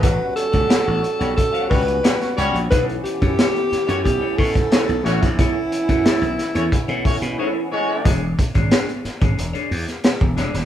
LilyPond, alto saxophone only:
\new Staff \with { instrumentName = "Alto saxophone" } { \time 4/4 \key b \dorian \tempo 4 = 90 b'8 a'4. a'8 b'4 r8 | b'8 g'4. g'8 a'4 fis'16 e'16~ | e'2.~ e'8 r8 | r1 | }